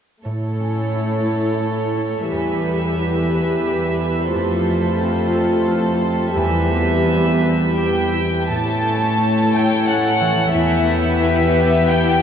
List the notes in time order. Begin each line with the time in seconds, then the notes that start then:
0.25 A2 A3 E4 A4 C#5
0.60 C#4
0.94 E4
1.29 C#5
1.63 A4
1.97 E4
2.31 E2 G3 G4 B4 E5
2.66 B3
2.99 E4
3.33 B4
3.67 G4
4.01 E4
4.34 F2 A3 F4 A4 C5
4.68 A3
5.00 C4
5.34 A4
5.68 F4
6.02 C4
6.35 E2 G3 G4 B4 E5
6.71 B3
7.06 E4
7.41 B4
7.76 G4 G5
8.13 E4
8.49 A2 A3 E4 A4 C#5 A5
8.85 C#4
9.18 E4
9.53 A4 G5
9.87 C#4 F#5
10.20 E3
10.54 E2 B3 G4 B4 E5
10.89 B3
11.22 E4
11.57 G4
11.90 B3 G5